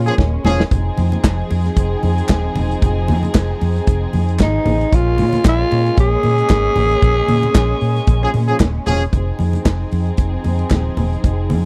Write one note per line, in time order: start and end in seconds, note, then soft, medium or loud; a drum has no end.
0.00 0.68 G#3 medium
0.00 0.68 A#3 medium
0.00 0.68 C#4 medium
0.00 0.42 F4 medium
0.07 0.14 F3 medium
0.07 0.14 C#4 medium
0.07 0.14 G#4 loud
0.07 closed hi-hat medium
0.18 0.36 D#1 medium
0.18 kick medium
0.18 snare medium
0.18 high conga medium
0.45 0.62 E1 medium
0.45 0.62 F3 medium
0.45 0.62 C#4 loud
0.45 0.62 G#4 loud
0.45 snare medium
0.45 high conga medium
0.45 low conga medium
0.60 snare medium
0.71 0.89 F1 medium
0.71 4.88 F3 medium
0.71 4.88 C4 medium
0.71 4.88 D#4 medium
0.71 4.88 G#4 medium
0.71 kick loud
0.71 closed hi-hat medium
0.71 muted conga soft
0.71 low conga medium
0.98 1.15 F2 medium
0.98 open hi-hat medium
0.98 muted conga soft
0.98 high conga medium
1.12 closed hi-hat medium
1.12 high conga medium
1.24 1.41 F1 medium
1.24 kick loud
1.24 snare loud
1.24 clap loud
1.24 closed hi-hat medium
1.50 1.68 F2 loud
1.50 open hi-hat medium
1.50 muted conga soft
1.66 snare soft
1.66 closed hi-hat soft
1.76 1.94 F1 medium
1.76 kick loud
1.76 closed hi-hat medium
2.03 2.21 F2 medium
2.03 open hi-hat medium
2.03 high conga medium
2.18 closed hi-hat medium
2.29 2.47 D#1 medium
2.29 kick medium
2.29 snare medium
2.29 clap medium
2.29 closed hi-hat medium
2.29 high conga medium
2.56 2.73 E1 medium
2.56 open hi-hat medium
2.56 muted conga soft
2.56 high conga medium
2.56 low conga medium
2.71 closed hi-hat soft
2.82 3.11 F1 medium
2.82 kick loud
2.82 closed hi-hat medium
2.82 muted conga soft
2.82 low conga medium
3.08 3.27 F2 medium
3.08 open hi-hat medium
3.08 high conga medium
3.23 closed hi-hat medium
3.23 high conga medium
3.35 3.52 F1 medium
3.35 kick loud
3.35 snare loud
3.35 clap loud
3.35 closed hi-hat medium
3.61 3.79 F2 loud
3.61 open hi-hat medium
3.61 muted conga soft
3.76 snare soft
3.76 closed hi-hat soft
3.87 4.05 F1 medium
3.87 kick loud
3.87 closed hi-hat medium
4.13 4.42 F2 medium
4.13 open hi-hat medium
4.13 high conga medium
4.29 closed hi-hat medium
4.39 4.57 G#1 loud
4.39 4.97 D#4 medium
4.39 kick medium
4.39 snare medium
4.39 clap medium
4.39 closed hi-hat medium
4.39 high conga medium
4.66 4.84 A1 medium
4.66 open hi-hat medium
4.66 muted conga soft
4.66 high conga medium
4.66 low conga medium
4.81 closed hi-hat soft
4.92 5.21 A#1 medium
4.92 9.09 G#3 medium
4.92 9.09 A#3 medium
4.92 9.09 C#4 medium
4.92 5.46 F4 loud
4.92 kick loud
4.92 closed hi-hat medium
4.92 muted conga soft
4.92 low conga medium
5.18 5.37 A#2 loud
5.18 open hi-hat medium
5.18 high conga medium
5.33 closed hi-hat medium
5.33 high conga medium
5.45 5.63 A#1 loud
5.45 5.96 F4 medium
5.45 kick loud
5.45 snare loud
5.45 clap loud
5.45 closed hi-hat medium
5.71 5.89 A#2 loud
5.71 open hi-hat medium
5.71 muted conga soft
5.86 closed hi-hat soft
5.97 6.15 A#1 medium
5.97 8.58 G#4 loud
5.97 kick loud
5.97 closed hi-hat medium
5.97 muted conga soft
6.23 6.41 A#2 medium
6.23 open hi-hat medium
6.23 high conga medium
6.38 closed hi-hat medium
6.49 6.67 G#1 medium
6.49 kick medium
6.49 snare medium
6.49 clap medium
6.49 closed hi-hat medium
6.49 muted conga soft
6.49 high conga medium
6.76 6.94 A1 loud
6.76 open hi-hat medium
6.76 high conga medium
6.76 low conga medium
6.91 closed hi-hat soft
7.02 7.20 A#1 medium
7.02 kick loud
7.02 closed hi-hat medium
7.02 muted conga soft
7.02 low conga medium
7.28 7.47 A#2 loud
7.28 open hi-hat medium
7.28 muted conga soft
7.28 high conga medium
7.43 closed hi-hat medium
7.43 high conga medium
7.55 7.73 A#1 loud
7.55 kick loud
7.55 snare loud
7.55 clap loud
7.55 closed hi-hat medium
7.81 7.99 A#2 medium
7.81 open hi-hat medium
7.96 snare soft
7.96 closed hi-hat soft
8.07 8.25 A#1 loud
8.07 kick loud
8.07 closed hi-hat medium
8.07 high conga medium
8.22 8.30 F3 medium
8.22 8.30 C#4 medium
8.22 8.30 G#4 loud
8.34 8.52 A#2 loud
8.34 open hi-hat medium
8.34 high conga medium
8.48 8.56 F3 medium
8.48 8.56 C#4 medium
8.48 8.56 G#4 medium
8.48 closed hi-hat medium
8.60 8.78 D#1 medium
8.60 kick medium
8.60 snare loud
8.60 clap medium
8.60 closed hi-hat medium
8.60 muted conga soft
8.60 high conga medium
8.86 9.04 E1 medium
8.86 9.03 F3 medium
8.86 9.03 C#4 loud
8.86 9.03 G#4 loud
8.86 open hi-hat medium
8.86 high conga medium
8.86 low conga medium
9.02 closed hi-hat soft
9.12 9.30 F1 medium
9.12 11.65 F3 medium
9.12 11.65 C4 medium
9.12 11.65 D#4 medium
9.12 11.65 G#4 medium
9.12 kick medium
9.12 closed hi-hat medium
9.12 muted conga soft
9.12 low conga medium
9.39 9.57 F2 medium
9.39 open hi-hat medium
9.39 high conga medium
9.53 closed hi-hat soft
9.53 high conga medium
9.65 9.83 F1 medium
9.65 kick loud
9.65 snare loud
9.65 clap loud
9.65 closed hi-hat medium
9.91 10.10 F2 loud
9.91 open hi-hat medium
9.91 muted conga soft
10.07 closed hi-hat soft
10.17 10.36 F1 medium
10.17 kick loud
10.17 closed hi-hat medium
10.17 muted conga soft
10.44 10.63 F2 medium
10.44 open hi-hat medium
10.44 muted conga soft
10.44 high conga medium
10.59 closed hi-hat medium
10.70 10.89 D#1 medium
10.70 kick medium
10.70 snare medium
10.70 clap medium
10.70 closed hi-hat medium
10.70 muted conga soft
10.70 high conga medium
10.97 11.15 E1 medium
10.97 open hi-hat medium
10.97 muted conga soft
10.97 high conga medium
10.97 low conga medium
11.13 closed hi-hat soft
11.24 11.52 F1 medium
11.24 kick loud
11.24 closed hi-hat medium
11.24 muted conga soft
11.24 low conga medium
11.50 11.65 F2 medium
11.50 open hi-hat medium
11.50 muted conga soft
11.50 high conga medium